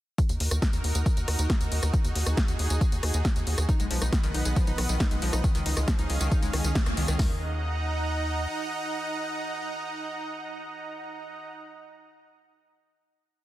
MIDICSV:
0, 0, Header, 1, 5, 480
1, 0, Start_track
1, 0, Key_signature, -6, "minor"
1, 0, Tempo, 437956
1, 202, Time_signature, 4, 2, 24, 8
1, 14732, End_track
2, 0, Start_track
2, 0, Title_t, "Supersaw synth"
2, 0, Program_c, 0, 81
2, 202, Note_on_c, 0, 63, 76
2, 202, Note_on_c, 0, 66, 69
2, 203, Note_on_c, 0, 70, 85
2, 2103, Note_off_c, 0, 70, 0
2, 2121, Note_on_c, 0, 68, 85
2, 4003, Note_off_c, 0, 63, 0
2, 4004, Note_off_c, 0, 66, 0
2, 4023, Note_off_c, 0, 68, 0
2, 4041, Note_on_c, 0, 78, 84
2, 4042, Note_on_c, 0, 59, 77
2, 4042, Note_on_c, 0, 71, 72
2, 4042, Note_on_c, 0, 75, 70
2, 5943, Note_off_c, 0, 59, 0
2, 5943, Note_off_c, 0, 71, 0
2, 5943, Note_off_c, 0, 78, 0
2, 5962, Note_on_c, 0, 61, 80
2, 5962, Note_on_c, 0, 68, 69
2, 5962, Note_on_c, 0, 77, 87
2, 7844, Note_off_c, 0, 75, 0
2, 7863, Note_off_c, 0, 61, 0
2, 7863, Note_off_c, 0, 68, 0
2, 7863, Note_off_c, 0, 77, 0
2, 7882, Note_on_c, 0, 63, 78
2, 7882, Note_on_c, 0, 75, 74
2, 7882, Note_on_c, 0, 82, 89
2, 7883, Note_on_c, 0, 78, 73
2, 12555, Note_off_c, 0, 63, 0
2, 12555, Note_off_c, 0, 75, 0
2, 12555, Note_off_c, 0, 78, 0
2, 12555, Note_off_c, 0, 82, 0
2, 14732, End_track
3, 0, Start_track
3, 0, Title_t, "Synth pluck"
3, 0, Program_c, 1, 84
3, 4042, Note_on_c, 1, 63, 83
3, 4142, Note_off_c, 1, 63, 0
3, 4162, Note_on_c, 1, 56, 79
3, 4228, Note_off_c, 1, 56, 0
3, 4282, Note_on_c, 1, 53, 98
3, 4381, Note_off_c, 1, 53, 0
3, 4402, Note_on_c, 1, 63, 79
3, 4468, Note_off_c, 1, 63, 0
3, 4521, Note_on_c, 1, 51, 84
3, 4588, Note_off_c, 1, 51, 0
3, 4641, Note_on_c, 1, 51, 102
3, 4741, Note_off_c, 1, 51, 0
3, 4761, Note_on_c, 1, 63, 77
3, 4861, Note_off_c, 1, 63, 0
3, 4882, Note_on_c, 1, 56, 78
3, 4948, Note_off_c, 1, 56, 0
3, 5002, Note_on_c, 1, 53, 105
3, 5102, Note_off_c, 1, 53, 0
3, 5122, Note_on_c, 1, 63, 75
3, 5189, Note_off_c, 1, 63, 0
3, 5242, Note_on_c, 1, 51, 78
3, 5309, Note_off_c, 1, 51, 0
3, 5362, Note_on_c, 1, 51, 98
3, 5462, Note_off_c, 1, 51, 0
3, 5482, Note_on_c, 1, 63, 81
3, 5582, Note_off_c, 1, 63, 0
3, 5602, Note_on_c, 1, 56, 78
3, 5668, Note_off_c, 1, 56, 0
3, 5721, Note_on_c, 1, 53, 107
3, 5821, Note_off_c, 1, 53, 0
3, 5841, Note_on_c, 1, 63, 80
3, 5908, Note_off_c, 1, 63, 0
3, 5961, Note_on_c, 1, 51, 86
3, 6028, Note_off_c, 1, 51, 0
3, 6081, Note_on_c, 1, 51, 101
3, 6181, Note_off_c, 1, 51, 0
3, 6201, Note_on_c, 1, 63, 75
3, 6301, Note_off_c, 1, 63, 0
3, 6322, Note_on_c, 1, 56, 76
3, 6388, Note_off_c, 1, 56, 0
3, 6441, Note_on_c, 1, 53, 104
3, 6541, Note_off_c, 1, 53, 0
3, 6562, Note_on_c, 1, 63, 78
3, 6629, Note_off_c, 1, 63, 0
3, 6682, Note_on_c, 1, 51, 77
3, 6748, Note_off_c, 1, 51, 0
3, 6802, Note_on_c, 1, 51, 103
3, 6902, Note_off_c, 1, 51, 0
3, 6922, Note_on_c, 1, 63, 88
3, 7022, Note_off_c, 1, 63, 0
3, 7042, Note_on_c, 1, 56, 76
3, 7109, Note_off_c, 1, 56, 0
3, 7161, Note_on_c, 1, 51, 77
3, 7201, Note_off_c, 1, 51, 0
3, 7283, Note_on_c, 1, 51, 72
3, 7382, Note_off_c, 1, 51, 0
3, 7402, Note_on_c, 1, 58, 83
3, 7469, Note_off_c, 1, 58, 0
3, 7523, Note_on_c, 1, 58, 80
3, 7622, Note_off_c, 1, 58, 0
3, 7643, Note_on_c, 1, 51, 110
3, 7709, Note_off_c, 1, 51, 0
3, 7764, Note_on_c, 1, 51, 103
3, 7829, Note_off_c, 1, 51, 0
3, 7883, Note_on_c, 1, 51, 92
3, 8106, Note_off_c, 1, 51, 0
3, 14732, End_track
4, 0, Start_track
4, 0, Title_t, "Analog synth bass"
4, 0, Program_c, 2, 38
4, 321, Note_on_c, 2, 39, 91
4, 412, Note_off_c, 2, 39, 0
4, 442, Note_on_c, 2, 39, 98
4, 532, Note_off_c, 2, 39, 0
4, 562, Note_on_c, 2, 39, 94
4, 652, Note_off_c, 2, 39, 0
4, 802, Note_on_c, 2, 39, 86
4, 892, Note_off_c, 2, 39, 0
4, 922, Note_on_c, 2, 39, 96
4, 1012, Note_off_c, 2, 39, 0
4, 1041, Note_on_c, 2, 39, 93
4, 1132, Note_off_c, 2, 39, 0
4, 1281, Note_on_c, 2, 39, 88
4, 1372, Note_off_c, 2, 39, 0
4, 1402, Note_on_c, 2, 39, 99
4, 1492, Note_off_c, 2, 39, 0
4, 1522, Note_on_c, 2, 39, 93
4, 1612, Note_off_c, 2, 39, 0
4, 1763, Note_on_c, 2, 39, 88
4, 1853, Note_off_c, 2, 39, 0
4, 1882, Note_on_c, 2, 39, 99
4, 1972, Note_off_c, 2, 39, 0
4, 2003, Note_on_c, 2, 39, 90
4, 2092, Note_off_c, 2, 39, 0
4, 2243, Note_on_c, 2, 39, 89
4, 2333, Note_off_c, 2, 39, 0
4, 2363, Note_on_c, 2, 39, 99
4, 2452, Note_off_c, 2, 39, 0
4, 2483, Note_on_c, 2, 39, 90
4, 2573, Note_off_c, 2, 39, 0
4, 2722, Note_on_c, 2, 39, 87
4, 2812, Note_off_c, 2, 39, 0
4, 2842, Note_on_c, 2, 39, 98
4, 2932, Note_off_c, 2, 39, 0
4, 2962, Note_on_c, 2, 39, 93
4, 3052, Note_off_c, 2, 39, 0
4, 3202, Note_on_c, 2, 39, 89
4, 3292, Note_off_c, 2, 39, 0
4, 3322, Note_on_c, 2, 39, 97
4, 3412, Note_off_c, 2, 39, 0
4, 3442, Note_on_c, 2, 39, 90
4, 3532, Note_off_c, 2, 39, 0
4, 3683, Note_on_c, 2, 39, 88
4, 3772, Note_off_c, 2, 39, 0
4, 3802, Note_on_c, 2, 39, 100
4, 3892, Note_off_c, 2, 39, 0
4, 3922, Note_on_c, 2, 39, 90
4, 4012, Note_off_c, 2, 39, 0
4, 4162, Note_on_c, 2, 35, 92
4, 4252, Note_off_c, 2, 35, 0
4, 4283, Note_on_c, 2, 35, 97
4, 4373, Note_off_c, 2, 35, 0
4, 4403, Note_on_c, 2, 35, 91
4, 4493, Note_off_c, 2, 35, 0
4, 4642, Note_on_c, 2, 35, 89
4, 4732, Note_off_c, 2, 35, 0
4, 4764, Note_on_c, 2, 35, 97
4, 4853, Note_off_c, 2, 35, 0
4, 4884, Note_on_c, 2, 35, 92
4, 4973, Note_off_c, 2, 35, 0
4, 5123, Note_on_c, 2, 35, 87
4, 5212, Note_off_c, 2, 35, 0
4, 5243, Note_on_c, 2, 35, 99
4, 5333, Note_off_c, 2, 35, 0
4, 5362, Note_on_c, 2, 35, 89
4, 5452, Note_off_c, 2, 35, 0
4, 5603, Note_on_c, 2, 35, 91
4, 5693, Note_off_c, 2, 35, 0
4, 5723, Note_on_c, 2, 35, 104
4, 5813, Note_off_c, 2, 35, 0
4, 5843, Note_on_c, 2, 35, 95
4, 5932, Note_off_c, 2, 35, 0
4, 6082, Note_on_c, 2, 37, 89
4, 6172, Note_off_c, 2, 37, 0
4, 6202, Note_on_c, 2, 37, 97
4, 6292, Note_off_c, 2, 37, 0
4, 6322, Note_on_c, 2, 37, 90
4, 6412, Note_off_c, 2, 37, 0
4, 6562, Note_on_c, 2, 37, 91
4, 6652, Note_off_c, 2, 37, 0
4, 6682, Note_on_c, 2, 37, 99
4, 6772, Note_off_c, 2, 37, 0
4, 6802, Note_on_c, 2, 37, 94
4, 6892, Note_off_c, 2, 37, 0
4, 7041, Note_on_c, 2, 37, 87
4, 7132, Note_off_c, 2, 37, 0
4, 7160, Note_on_c, 2, 37, 101
4, 7251, Note_off_c, 2, 37, 0
4, 7280, Note_on_c, 2, 37, 92
4, 7371, Note_off_c, 2, 37, 0
4, 7520, Note_on_c, 2, 37, 90
4, 7611, Note_off_c, 2, 37, 0
4, 7640, Note_on_c, 2, 37, 106
4, 7731, Note_off_c, 2, 37, 0
4, 7762, Note_on_c, 2, 37, 90
4, 7852, Note_off_c, 2, 37, 0
4, 7882, Note_on_c, 2, 39, 97
4, 9278, Note_off_c, 2, 39, 0
4, 14732, End_track
5, 0, Start_track
5, 0, Title_t, "Drums"
5, 201, Note_on_c, 9, 36, 119
5, 202, Note_on_c, 9, 42, 67
5, 202, Note_on_c, 9, 54, 50
5, 311, Note_off_c, 9, 36, 0
5, 311, Note_off_c, 9, 42, 0
5, 311, Note_off_c, 9, 54, 0
5, 321, Note_on_c, 9, 42, 68
5, 321, Note_on_c, 9, 54, 31
5, 431, Note_off_c, 9, 42, 0
5, 431, Note_off_c, 9, 54, 0
5, 441, Note_on_c, 9, 46, 105
5, 551, Note_off_c, 9, 46, 0
5, 562, Note_on_c, 9, 37, 73
5, 562, Note_on_c, 9, 42, 66
5, 562, Note_on_c, 9, 54, 62
5, 671, Note_off_c, 9, 37, 0
5, 671, Note_off_c, 9, 42, 0
5, 671, Note_off_c, 9, 54, 0
5, 681, Note_on_c, 9, 36, 117
5, 682, Note_on_c, 9, 38, 125
5, 682, Note_on_c, 9, 42, 71
5, 682, Note_on_c, 9, 54, 52
5, 791, Note_off_c, 9, 36, 0
5, 792, Note_off_c, 9, 38, 0
5, 792, Note_off_c, 9, 42, 0
5, 792, Note_off_c, 9, 54, 0
5, 802, Note_on_c, 9, 42, 67
5, 802, Note_on_c, 9, 54, 31
5, 912, Note_off_c, 9, 42, 0
5, 912, Note_off_c, 9, 54, 0
5, 922, Note_on_c, 9, 46, 85
5, 1032, Note_off_c, 9, 46, 0
5, 1042, Note_on_c, 9, 42, 72
5, 1042, Note_on_c, 9, 54, 62
5, 1151, Note_off_c, 9, 42, 0
5, 1151, Note_off_c, 9, 54, 0
5, 1161, Note_on_c, 9, 36, 121
5, 1162, Note_on_c, 9, 42, 70
5, 1162, Note_on_c, 9, 54, 50
5, 1271, Note_off_c, 9, 36, 0
5, 1272, Note_off_c, 9, 42, 0
5, 1272, Note_off_c, 9, 54, 0
5, 1282, Note_on_c, 9, 42, 70
5, 1282, Note_on_c, 9, 54, 31
5, 1391, Note_off_c, 9, 42, 0
5, 1391, Note_off_c, 9, 54, 0
5, 1402, Note_on_c, 9, 37, 77
5, 1402, Note_on_c, 9, 46, 110
5, 1511, Note_off_c, 9, 37, 0
5, 1511, Note_off_c, 9, 46, 0
5, 1522, Note_on_c, 9, 42, 72
5, 1522, Note_on_c, 9, 54, 60
5, 1632, Note_off_c, 9, 42, 0
5, 1632, Note_off_c, 9, 54, 0
5, 1641, Note_on_c, 9, 36, 119
5, 1642, Note_on_c, 9, 38, 126
5, 1642, Note_on_c, 9, 42, 70
5, 1642, Note_on_c, 9, 54, 52
5, 1751, Note_off_c, 9, 36, 0
5, 1751, Note_off_c, 9, 38, 0
5, 1751, Note_off_c, 9, 42, 0
5, 1751, Note_off_c, 9, 54, 0
5, 1761, Note_on_c, 9, 42, 70
5, 1761, Note_on_c, 9, 54, 31
5, 1871, Note_off_c, 9, 42, 0
5, 1871, Note_off_c, 9, 54, 0
5, 1882, Note_on_c, 9, 46, 93
5, 1991, Note_off_c, 9, 46, 0
5, 2003, Note_on_c, 9, 37, 80
5, 2003, Note_on_c, 9, 42, 75
5, 2003, Note_on_c, 9, 54, 66
5, 2112, Note_off_c, 9, 37, 0
5, 2112, Note_off_c, 9, 42, 0
5, 2112, Note_off_c, 9, 54, 0
5, 2121, Note_on_c, 9, 36, 125
5, 2122, Note_on_c, 9, 42, 65
5, 2122, Note_on_c, 9, 54, 49
5, 2231, Note_off_c, 9, 36, 0
5, 2231, Note_off_c, 9, 42, 0
5, 2231, Note_off_c, 9, 54, 0
5, 2242, Note_on_c, 9, 42, 70
5, 2242, Note_on_c, 9, 54, 31
5, 2351, Note_off_c, 9, 42, 0
5, 2351, Note_off_c, 9, 54, 0
5, 2362, Note_on_c, 9, 46, 107
5, 2472, Note_off_c, 9, 46, 0
5, 2482, Note_on_c, 9, 37, 78
5, 2482, Note_on_c, 9, 42, 68
5, 2482, Note_on_c, 9, 54, 60
5, 2591, Note_off_c, 9, 37, 0
5, 2591, Note_off_c, 9, 42, 0
5, 2591, Note_off_c, 9, 54, 0
5, 2601, Note_on_c, 9, 36, 121
5, 2601, Note_on_c, 9, 38, 127
5, 2601, Note_on_c, 9, 42, 70
5, 2601, Note_on_c, 9, 54, 51
5, 2711, Note_off_c, 9, 36, 0
5, 2711, Note_off_c, 9, 38, 0
5, 2711, Note_off_c, 9, 42, 0
5, 2711, Note_off_c, 9, 54, 0
5, 2721, Note_on_c, 9, 42, 67
5, 2721, Note_on_c, 9, 54, 31
5, 2831, Note_off_c, 9, 42, 0
5, 2831, Note_off_c, 9, 54, 0
5, 2841, Note_on_c, 9, 46, 91
5, 2951, Note_off_c, 9, 46, 0
5, 2962, Note_on_c, 9, 42, 69
5, 2962, Note_on_c, 9, 54, 62
5, 3071, Note_off_c, 9, 42, 0
5, 3071, Note_off_c, 9, 54, 0
5, 3081, Note_on_c, 9, 36, 127
5, 3082, Note_on_c, 9, 42, 66
5, 3082, Note_on_c, 9, 54, 51
5, 3190, Note_off_c, 9, 36, 0
5, 3191, Note_off_c, 9, 42, 0
5, 3191, Note_off_c, 9, 54, 0
5, 3203, Note_on_c, 9, 42, 68
5, 3203, Note_on_c, 9, 54, 31
5, 3312, Note_off_c, 9, 42, 0
5, 3312, Note_off_c, 9, 54, 0
5, 3321, Note_on_c, 9, 37, 79
5, 3321, Note_on_c, 9, 46, 107
5, 3431, Note_off_c, 9, 37, 0
5, 3431, Note_off_c, 9, 46, 0
5, 3441, Note_on_c, 9, 42, 69
5, 3441, Note_on_c, 9, 54, 61
5, 3550, Note_off_c, 9, 42, 0
5, 3550, Note_off_c, 9, 54, 0
5, 3561, Note_on_c, 9, 36, 124
5, 3561, Note_on_c, 9, 38, 127
5, 3561, Note_on_c, 9, 42, 68
5, 3561, Note_on_c, 9, 54, 53
5, 3670, Note_off_c, 9, 36, 0
5, 3670, Note_off_c, 9, 38, 0
5, 3670, Note_off_c, 9, 42, 0
5, 3670, Note_off_c, 9, 54, 0
5, 3682, Note_on_c, 9, 42, 67
5, 3682, Note_on_c, 9, 54, 31
5, 3791, Note_off_c, 9, 42, 0
5, 3791, Note_off_c, 9, 54, 0
5, 3802, Note_on_c, 9, 46, 95
5, 3911, Note_off_c, 9, 46, 0
5, 3922, Note_on_c, 9, 37, 83
5, 3922, Note_on_c, 9, 42, 70
5, 3922, Note_on_c, 9, 54, 65
5, 4031, Note_off_c, 9, 37, 0
5, 4031, Note_off_c, 9, 42, 0
5, 4031, Note_off_c, 9, 54, 0
5, 4041, Note_on_c, 9, 36, 127
5, 4042, Note_on_c, 9, 42, 64
5, 4042, Note_on_c, 9, 54, 51
5, 4151, Note_off_c, 9, 36, 0
5, 4152, Note_off_c, 9, 42, 0
5, 4152, Note_off_c, 9, 54, 0
5, 4162, Note_on_c, 9, 42, 66
5, 4162, Note_on_c, 9, 54, 33
5, 4272, Note_off_c, 9, 42, 0
5, 4272, Note_off_c, 9, 54, 0
5, 4281, Note_on_c, 9, 46, 110
5, 4391, Note_off_c, 9, 46, 0
5, 4402, Note_on_c, 9, 37, 82
5, 4402, Note_on_c, 9, 42, 65
5, 4402, Note_on_c, 9, 54, 64
5, 4511, Note_off_c, 9, 37, 0
5, 4511, Note_off_c, 9, 42, 0
5, 4511, Note_off_c, 9, 54, 0
5, 4521, Note_on_c, 9, 36, 125
5, 4522, Note_on_c, 9, 38, 123
5, 4522, Note_on_c, 9, 42, 68
5, 4522, Note_on_c, 9, 54, 54
5, 4631, Note_off_c, 9, 36, 0
5, 4631, Note_off_c, 9, 38, 0
5, 4631, Note_off_c, 9, 42, 0
5, 4631, Note_off_c, 9, 54, 0
5, 4642, Note_on_c, 9, 42, 67
5, 4642, Note_on_c, 9, 54, 33
5, 4752, Note_off_c, 9, 42, 0
5, 4752, Note_off_c, 9, 54, 0
5, 4762, Note_on_c, 9, 46, 90
5, 4872, Note_off_c, 9, 46, 0
5, 4881, Note_on_c, 9, 42, 66
5, 4881, Note_on_c, 9, 54, 62
5, 4991, Note_off_c, 9, 42, 0
5, 4991, Note_off_c, 9, 54, 0
5, 5002, Note_on_c, 9, 36, 127
5, 5002, Note_on_c, 9, 42, 67
5, 5002, Note_on_c, 9, 54, 51
5, 5111, Note_off_c, 9, 36, 0
5, 5111, Note_off_c, 9, 42, 0
5, 5111, Note_off_c, 9, 54, 0
5, 5121, Note_on_c, 9, 42, 67
5, 5121, Note_on_c, 9, 54, 33
5, 5231, Note_off_c, 9, 42, 0
5, 5231, Note_off_c, 9, 54, 0
5, 5241, Note_on_c, 9, 37, 82
5, 5241, Note_on_c, 9, 46, 117
5, 5351, Note_off_c, 9, 37, 0
5, 5351, Note_off_c, 9, 46, 0
5, 5362, Note_on_c, 9, 42, 64
5, 5362, Note_on_c, 9, 54, 63
5, 5471, Note_off_c, 9, 42, 0
5, 5471, Note_off_c, 9, 54, 0
5, 5481, Note_on_c, 9, 38, 126
5, 5481, Note_on_c, 9, 42, 64
5, 5481, Note_on_c, 9, 54, 52
5, 5482, Note_on_c, 9, 36, 120
5, 5591, Note_off_c, 9, 36, 0
5, 5591, Note_off_c, 9, 38, 0
5, 5591, Note_off_c, 9, 42, 0
5, 5591, Note_off_c, 9, 54, 0
5, 5602, Note_on_c, 9, 42, 66
5, 5602, Note_on_c, 9, 54, 33
5, 5712, Note_off_c, 9, 42, 0
5, 5712, Note_off_c, 9, 54, 0
5, 5722, Note_on_c, 9, 46, 96
5, 5831, Note_off_c, 9, 46, 0
5, 5842, Note_on_c, 9, 37, 89
5, 5842, Note_on_c, 9, 42, 68
5, 5842, Note_on_c, 9, 54, 67
5, 5952, Note_off_c, 9, 37, 0
5, 5952, Note_off_c, 9, 42, 0
5, 5952, Note_off_c, 9, 54, 0
5, 5962, Note_on_c, 9, 36, 127
5, 5963, Note_on_c, 9, 42, 63
5, 5963, Note_on_c, 9, 54, 53
5, 6072, Note_off_c, 9, 36, 0
5, 6072, Note_off_c, 9, 42, 0
5, 6072, Note_off_c, 9, 54, 0
5, 6082, Note_on_c, 9, 42, 67
5, 6082, Note_on_c, 9, 54, 33
5, 6192, Note_off_c, 9, 42, 0
5, 6192, Note_off_c, 9, 54, 0
5, 6202, Note_on_c, 9, 46, 112
5, 6311, Note_off_c, 9, 46, 0
5, 6322, Note_on_c, 9, 37, 85
5, 6322, Note_on_c, 9, 42, 62
5, 6322, Note_on_c, 9, 54, 63
5, 6431, Note_off_c, 9, 37, 0
5, 6431, Note_off_c, 9, 42, 0
5, 6431, Note_off_c, 9, 54, 0
5, 6442, Note_on_c, 9, 36, 122
5, 6442, Note_on_c, 9, 38, 122
5, 6442, Note_on_c, 9, 42, 67
5, 6442, Note_on_c, 9, 54, 56
5, 6551, Note_off_c, 9, 38, 0
5, 6551, Note_off_c, 9, 42, 0
5, 6551, Note_off_c, 9, 54, 0
5, 6552, Note_off_c, 9, 36, 0
5, 6562, Note_on_c, 9, 42, 66
5, 6562, Note_on_c, 9, 54, 33
5, 6672, Note_off_c, 9, 42, 0
5, 6672, Note_off_c, 9, 54, 0
5, 6682, Note_on_c, 9, 46, 91
5, 6792, Note_off_c, 9, 46, 0
5, 6802, Note_on_c, 9, 42, 65
5, 6802, Note_on_c, 9, 54, 66
5, 6912, Note_off_c, 9, 42, 0
5, 6912, Note_off_c, 9, 54, 0
5, 6922, Note_on_c, 9, 36, 127
5, 6922, Note_on_c, 9, 42, 63
5, 6922, Note_on_c, 9, 54, 52
5, 7032, Note_off_c, 9, 36, 0
5, 7032, Note_off_c, 9, 42, 0
5, 7032, Note_off_c, 9, 54, 0
5, 7042, Note_on_c, 9, 42, 66
5, 7042, Note_on_c, 9, 54, 35
5, 7152, Note_off_c, 9, 42, 0
5, 7152, Note_off_c, 9, 54, 0
5, 7162, Note_on_c, 9, 37, 84
5, 7162, Note_on_c, 9, 46, 109
5, 7272, Note_off_c, 9, 37, 0
5, 7272, Note_off_c, 9, 46, 0
5, 7282, Note_on_c, 9, 42, 65
5, 7282, Note_on_c, 9, 54, 68
5, 7392, Note_off_c, 9, 42, 0
5, 7392, Note_off_c, 9, 54, 0
5, 7402, Note_on_c, 9, 36, 121
5, 7402, Note_on_c, 9, 38, 120
5, 7402, Note_on_c, 9, 42, 65
5, 7402, Note_on_c, 9, 54, 54
5, 7512, Note_off_c, 9, 36, 0
5, 7512, Note_off_c, 9, 38, 0
5, 7512, Note_off_c, 9, 42, 0
5, 7512, Note_off_c, 9, 54, 0
5, 7522, Note_on_c, 9, 37, 66
5, 7522, Note_on_c, 9, 42, 64
5, 7522, Note_on_c, 9, 54, 33
5, 7631, Note_off_c, 9, 37, 0
5, 7631, Note_off_c, 9, 42, 0
5, 7631, Note_off_c, 9, 54, 0
5, 7641, Note_on_c, 9, 46, 98
5, 7751, Note_off_c, 9, 46, 0
5, 7762, Note_on_c, 9, 37, 90
5, 7762, Note_on_c, 9, 42, 67
5, 7762, Note_on_c, 9, 54, 70
5, 7871, Note_off_c, 9, 37, 0
5, 7871, Note_off_c, 9, 42, 0
5, 7871, Note_off_c, 9, 54, 0
5, 7882, Note_on_c, 9, 36, 107
5, 7882, Note_on_c, 9, 38, 110
5, 7882, Note_on_c, 9, 46, 91
5, 7992, Note_off_c, 9, 36, 0
5, 7992, Note_off_c, 9, 38, 0
5, 7992, Note_off_c, 9, 46, 0
5, 14732, End_track
0, 0, End_of_file